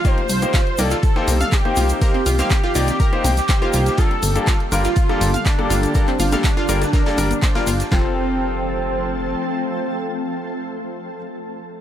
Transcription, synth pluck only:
X:1
M:4/4
L:1/16
Q:1/4=122
K:Fmix
V:1 name="Synth pluck"
F z3 F z2 F z3 f z2 F z | B C F f z F F z B z3 c F F z | F z3 F z2 F z3 f z2 F z | B C F f z F F z B z3 c F F z |
F2 z12 z2 | z16 |]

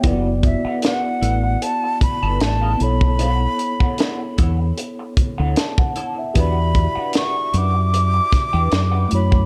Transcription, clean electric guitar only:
X:1
M:4/4
L:1/16
Q:"Swing 16ths" 1/4=76
K:Edor
V:1 name="Clean electric guitar"
[EABf] z2 [EABf] [EABf] z [EABf] z4 [EABa] z [EABf] z2 | [EAcf] z2 [EAcf] [EAcf] z [EAcf] z4 [EAcf] z2 [EAca] z | [DGBf] z2 [DGBf] [DGBf] z [DGBf] z4 [DGBg] z [DGBf] z2 |]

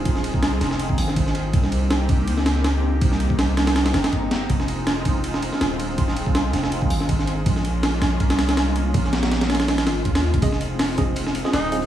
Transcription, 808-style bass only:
X:1
M:4/4
L:1/16
Q:"Swing 16ths" 1/4=162
K:Fm
V:1 name="808-style bass" clef=bass
E,,,3 C,,3 F,,,4 A,,,6 | C,,6 C,,2 D,,8 | C,,8- C,,2 G,,,6 | F,,,8- F,,,3 z E,,,4- |
E,,,3 C,,3 F,,,4 A,,,6 | B,,,6 B,,,2 C,,8 | B,,,8- B,,,2 A,,,2 E,,4 | F,,,8- F,,,3 z E,,,4 |]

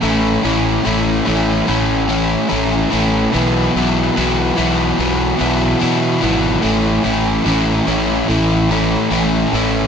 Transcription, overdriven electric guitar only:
X:1
M:4/4
L:1/8
Q:1/4=73
K:A
V:1 name="Overdriven electric guitar"
[A,,E,A,CE] [A,,E,A,CE] [A,,E,A,CE] [A,,E,A,CE] [A,,E,A,CE] [A,,E,A,CE] [A,,E,A,CE] [A,,E,A,CE] | [B,,E,F,B,E] [B,,E,F,B,E] [B,,E,F,B,E] [B,,E,F,B,E] [B,,E,F,B,E] [B,,E,F,B,E] [B,,E,F,B,E] [B,,E,F,B,E] | [A,,E,A,CE] [A,,E,A,CE] [A,,E,A,CE] [A,,E,A,CE] [A,,E,A,CE] [A,,E,A,CE] [A,,E,A,CE] [A,,E,A,CE] |]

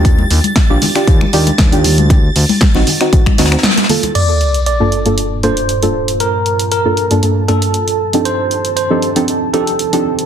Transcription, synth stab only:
X:1
M:4/4
L:1/16
Q:"Swing 16ths" 1/4=117
K:Gm
V:1 name="Synth stab"
[DFG]4- [DFG] [DFG]2 [DFG]3 [DFG] z2 [DFG]2 z | z4 z [CE^F]2 [CEF] [CEF]2 [CEF] [CEF] z2 [B,=FA]2- | [B,FA]2 z3 [G,,B,DFA]2 [G,,B,DFA]3 [G,,B,DFA] z2 [G,,B,DFA]2 z | z4 z [G,,B,DFA]2 [G,,B,DFA] [G,,B,DFA]2 [G,,B,DFA]2 z3 [F,CDEGA]- |
[F,CDEGA]4- [F,CDEGA] [F,CDEGA]2 [F,CDEGA]3 [F,CDEGA] z2 [F,CDEGA]2 z |]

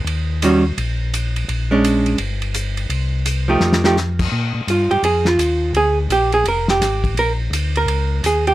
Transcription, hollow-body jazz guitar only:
X:1
M:4/4
L:1/8
Q:"Swing" 1/4=169
K:Bbmix
V:1 name="Hollow-body jazz guitar"
z2 [E,G,_D^F] z4 z | z [A,^CD]3 z4 | z3 [F,=A,EG]2 [F,A,EG] z2 | z2 F G A F3 |
A z G A B G3 | B z2 B3 A G |]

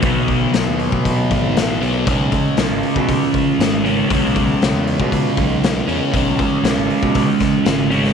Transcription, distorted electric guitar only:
X:1
M:4/4
L:1/8
Q:1/4=118
K:C#m
V:1 name="Distorted electric guitar" clef=bass
[B,,F,B,]6- [B,,F,B,] [B,,F,B,] | [C,G,C]6- [C,G,C] [C,G,C] | [C,G,C]6- [C,G,C] [C,G,C] | [C,G,C]6- [C,G,C] [C,G,C] |]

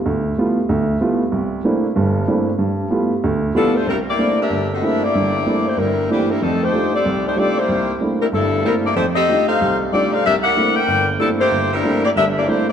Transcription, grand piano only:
X:1
M:4/4
L:1/8
Q:"Swing" 1/4=188
K:Gmix
V:1 name="Grand piano"
D,,2 [G,A,B,EF] z D,,2 [G,A,B,EF] z | C,,2 [A,_B,CDE] z [G,,,G,,]2 [A,B,CDE] z | G,,2 [G,A,B,EF] z D,,2 [G,A,B,EF] z | [K:Cmix] C,,2 [A,B,CDE] z G,,,2 [A,B,CDE] z |
[G,,,G,,]2 [A,B,CDE] z G,,,2 [A,B,CDE] z | [F,,A,]2 [G,A,D_EF] z C,,2 [G,A,DEF] z | C,,2 [A,B,CDE] z [G,,,G,,]2 [A,B,CDE] z | F,,2 [G,A,D_EF] z [C,,C,]2 [G,A,DEF] z |
C,,2 [A,B,CDE] z G,,,2 [A,B,CDE] z | G,,,2 [A,B,CDE] z [G,,,G,,]2 [A,B,CDE] z |]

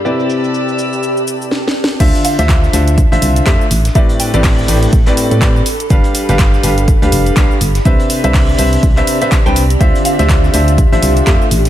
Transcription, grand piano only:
X:1
M:4/4
L:1/16
Q:"Swing 16ths" 1/4=123
K:Ddor
V:1 name="Grand piano"
[C,CEBd]12 z4 | [D,DFce]3 [D,DFce]3 [D,DFce]2 z [D,DFce]3 [A,DFce] z3 | [A,,CGBd]3 [A,,CGBd]3 [A,,CGBd]2 z [A,,CGBd]3 [CGBd] z3 | [G,DGBf]3 [G,DGBf]3 [G,DGBf]2 z [G,DGBf]3 [G,DGBf] z3 |
[C,DBce]3 [C,DBce]3 [C,DBce]2 z [C,DBce]2 [C,DBce] z [C,DBcg] z2 | [D,DFce]3 [D,DFce]3 [D,DFce]2 z [D,DFce]3 [A,DFce] z3 |]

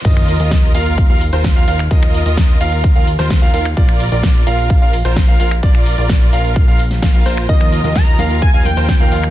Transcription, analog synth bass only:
X:1
M:4/4
L:1/16
Q:1/4=129
K:Bbmix
V:1 name="Analog synth bass" clef=bass
E,,3 E,,3 E,,3 E,,2 E,,2 E,, E,,2 | E,,3 E,,3 E,,3 E,,2 E,,2 E,, E,,2 | B,,,3 B,,,3 B,,,3 B,,,2 B,,,2 B,,, B,,,2 | B,,,3 B,,,3 B,,,3 B,,,3 B,,, B,,, B,,,2 |
E,,3 E,,3 E,,3 E,,2 E,,2 E,, E,,2 |]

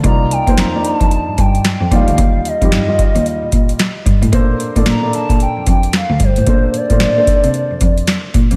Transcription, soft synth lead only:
X:1
M:4/4
L:1/8
Q:"Swing 16ths" 1/4=112
K:Bb
V:1 name="Soft synth lead"
b g b a2 g2 f- | f e6 z | z2 b a g g f c- | c d6 z |]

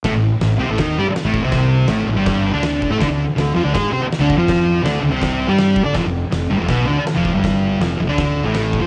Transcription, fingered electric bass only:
X:1
M:4/4
L:1/16
Q:1/4=162
K:Am
V:1 name="Fingered electric bass" clef=bass
A,,, A,,,2 z A,,,2 C,, A,,, ^D,,2 G,, z2 A,,,2 C,,- | C,,4 A,,,2 A,,, G,,,4 D,,4 A,, | D,, D,,2 z D,,2 F,, D,, ^G,,2 C, z2 D,,2 F,,- | F,,4 D,,2 D,, C,,4 G,,4 D, |
F,,, F,,,2 z F,,,2 G,,, F,,, B,,,2 D,, z2 F,,,2 G,,,- | G,,,4 F,,,2 F,,, D,,4 A,,,4 F,, |]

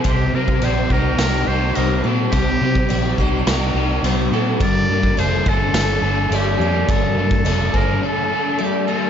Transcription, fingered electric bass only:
X:1
M:4/4
L:1/8
Q:1/4=105
K:Gm
V:1 name="Fingered electric bass" clef=bass
C,, C, B,,, C,, C,, C,, C,, B,, | C,, C, B,,, C,, C,, C,, C,, B,, | G,,, G,, F,,, G,,, G,,, G,,, G,,, F,, | G,,, G,, F,,, G,,, z4 |]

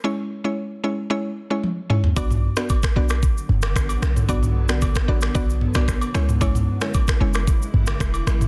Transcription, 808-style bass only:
X:1
M:4/4
L:1/16
Q:1/4=113
K:Bdor
V:1 name="808-style bass" clef=bass
z16 | B,,,3 z3 B,,,3 z F,,,2 A,,,2 B,,,2 | B,,,4- B,,, z A,,,2 B,,,3 B,,,2 z C,,2- | C,,3 z3 F,,,3 z G,,,2 E,,,2 G,,,2 |]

